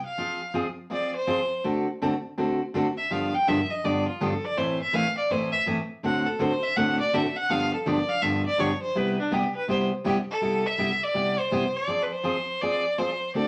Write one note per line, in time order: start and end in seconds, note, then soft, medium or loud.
0.05 0.52 F5 medium
0.18 0.40 F3 medium
0.18 0.40 C4 medium
0.18 0.40 F4 medium
0.18 0.40 G#4 medium
0.54 0.66 F3 medium
0.54 0.66 C4 medium
0.54 0.66 F4 medium
0.54 0.66 G#4 medium
0.90 1.12 F3 medium
0.90 1.12 C4 medium
0.90 1.13 F4 medium
0.90 1.13 G#4 medium
0.90 1.13 D5 medium
1.15 1.61 C5 loud
1.27 1.39 F3 medium
1.27 1.39 C4 medium
1.27 1.39 F4 medium
1.27 1.40 G#4 medium
1.64 1.86 D3 medium
1.64 1.86 A3 medium
1.64 1.86 C4 medium
1.64 1.86 F#4 medium
1.64 1.86 A4 medium
2.02 2.13 D3 medium
2.02 2.13 A3 medium
2.02 2.13 C4 medium
2.02 2.13 F#4 medium
2.02 2.13 A4 loud
2.38 2.59 D3 medium
2.38 2.59 A3 medium
2.38 2.59 C4 medium
2.38 2.59 F#4 medium
2.38 2.60 A4 medium
2.74 2.86 D3 medium
2.74 2.86 A3 medium
2.74 2.86 C4 medium
2.74 2.86 F#4 medium
2.74 2.86 A4 medium
2.97 3.13 E5 loud
3.10 3.32 G2 medium
3.10 3.32 D3 medium
3.10 3.32 F3 medium
3.10 3.32 B3 medium
3.10 3.32 D4 medium
3.10 3.33 G4 medium
3.10 3.36 F5 medium
3.34 3.50 G5 loud
3.47 3.59 G2 medium
3.47 3.59 D3 medium
3.47 3.59 F3 medium
3.47 3.59 B3 medium
3.47 3.59 D4 medium
3.47 3.59 G4 medium
3.47 3.72 E5 medium
3.71 3.86 D#5 loud
3.84 4.06 G2 medium
3.84 4.06 D3 medium
3.84 4.06 F3 medium
3.84 4.06 B3 medium
3.84 4.06 D4 medium
3.84 4.06 G4 medium
3.84 4.07 D5 medium
4.08 4.23 F4 medium
4.20 4.32 G2 medium
4.20 4.32 D3 medium
4.20 4.32 F3 medium
4.20 4.32 B3 medium
4.20 4.32 D4 medium
4.20 4.32 G4 medium
4.20 4.46 A4 medium
4.45 4.59 D5 loud
4.57 4.79 A2 medium
4.57 4.79 E3 medium
4.57 4.79 A3 medium
4.57 4.79 C4 medium
4.57 4.79 E4 medium
4.57 4.79 B4 medium
4.57 4.81 C5 medium
4.82 4.96 E5 loud
4.93 5.05 A2 medium
4.93 5.05 E3 medium
4.93 5.05 A3 medium
4.93 5.05 C4 medium
4.93 5.05 E4 medium
4.93 5.05 B4 loud
4.93 5.17 F5 loud
5.17 5.32 D5 medium
5.30 5.52 A2 medium
5.30 5.52 E3 medium
5.30 5.52 A3 medium
5.30 5.52 C4 medium
5.30 5.52 E4 medium
5.30 5.52 B4 medium
5.30 5.51 C5 medium
5.52 5.60 E5 loud
5.66 5.78 A2 medium
5.66 5.78 E3 medium
5.66 5.78 A3 medium
5.66 5.78 C4 medium
5.66 5.78 E4 medium
5.66 5.78 B4 medium
6.03 6.25 A2 medium
6.03 6.25 D3 medium
6.03 6.25 A3 medium
6.03 6.25 C4 medium
6.03 6.25 F#4 medium
6.03 6.25 A4 medium
6.03 6.28 F#5 medium
6.26 6.42 A4 medium
6.39 6.51 A2 medium
6.39 6.51 D3 medium
6.39 6.51 A3 medium
6.39 6.51 C4 medium
6.39 6.51 F#4 medium
6.39 6.51 A4 medium
6.39 6.65 C5 loud
6.63 6.78 E5 loud
6.76 6.98 A2 medium
6.76 6.98 D3 medium
6.76 6.98 A3 medium
6.76 6.98 C4 medium
6.76 6.98 F#4 medium
6.76 6.98 A4 medium
6.76 6.99 F#5 loud
6.99 7.15 D5 loud
7.13 7.24 A2 medium
7.13 7.24 D3 medium
7.13 7.25 A3 medium
7.13 7.25 C4 medium
7.13 7.25 F#4 medium
7.13 7.25 A4 loud
7.13 7.38 E5 medium
7.36 7.52 F#5 loud
7.49 7.71 G2 medium
7.49 7.71 D3 medium
7.49 7.71 F3 medium
7.49 7.71 B3 medium
7.49 7.71 D4 medium
7.49 7.71 G4 medium
7.49 7.73 F5 loud
7.74 7.88 A4 medium
7.86 7.97 G2 medium
7.86 7.97 D3 medium
7.86 7.98 F3 medium
7.86 7.98 B3 medium
7.86 7.98 D4 medium
7.86 7.98 G4 medium
7.86 8.10 D5 medium
8.09 8.24 F5 loud
8.22 8.44 G2 medium
8.22 8.44 D3 medium
8.22 8.44 F3 medium
8.22 8.44 B3 medium
8.22 8.44 D4 medium
8.22 8.44 G4 medium
8.22 8.45 E5 loud
8.46 8.62 D5 loud
8.58 8.70 G2 medium
8.58 8.70 D3 medium
8.58 8.70 F3 medium
8.58 8.70 B3 medium
8.58 8.70 D4 medium
8.58 8.71 G4 loud
8.58 8.81 C#5 medium
8.82 8.99 C5 medium
8.95 9.17 C3 medium
8.95 9.17 G3 medium
8.95 9.17 B3 medium
8.95 9.17 E4 medium
8.95 9.17 G4 medium
8.95 9.19 B4 medium
9.19 9.35 D4 medium
9.31 9.43 C3 medium
9.31 9.43 G3 medium
9.31 9.43 B3 loud
9.31 9.44 E4 medium
9.31 9.44 G4 medium
9.31 9.55 G4 medium
9.56 9.68 B4 medium
9.68 9.90 C3 medium
9.68 9.90 G3 medium
9.68 9.90 B3 medium
9.68 9.90 E4 medium
9.68 9.91 G4 medium
9.68 9.83 C5 loud
10.04 10.16 C3 medium
10.04 10.17 G3 medium
10.04 10.16 B3 medium
10.04 10.17 E4 loud
10.04 10.17 G4 medium
10.31 10.68 A4 loud
10.41 10.63 C3 medium
10.41 10.63 G3 medium
10.41 10.63 B3 medium
10.41 10.64 E4 medium
10.41 10.64 G4 medium
10.66 11.04 E5 loud
10.78 10.90 C3 medium
10.78 10.90 G3 medium
10.78 10.90 B3 medium
10.78 10.90 E4 medium
10.78 10.90 G4 medium
11.03 11.41 D5 loud
11.14 11.36 C3 medium
11.14 11.36 G3 medium
11.14 11.36 B3 medium
11.14 11.37 E4 medium
11.14 11.37 G4 medium
11.39 11.78 C5 loud
11.51 11.63 C3 medium
11.51 11.63 G3 medium
11.51 11.63 B3 medium
11.51 11.63 E4 medium
11.51 11.63 G4 medium
11.76 12.04 D5 loud
11.87 12.09 F3 medium
11.87 12.10 C4 medium
11.87 12.10 F4 medium
11.87 12.10 G#4 medium
12.02 12.14 B4 medium
12.12 12.63 C5 loud
12.24 12.36 F3 medium
12.24 12.36 C4 medium
12.24 12.36 F4 medium
12.24 12.36 G#4 medium
12.61 12.83 F3 medium
12.61 12.84 C4 medium
12.61 12.84 F4 medium
12.61 12.84 G#4 medium
12.61 12.99 D5 loud
12.98 13.10 F3 medium
12.98 13.10 C4 medium
12.98 13.10 F4 medium
12.98 13.10 G#4 medium
12.98 13.35 C5 loud
13.34 13.48 D3 medium
13.34 13.48 A3 medium
13.34 13.48 C4 medium
13.34 13.48 F#4 medium
13.34 13.48 A4 medium
13.34 13.48 D5 loud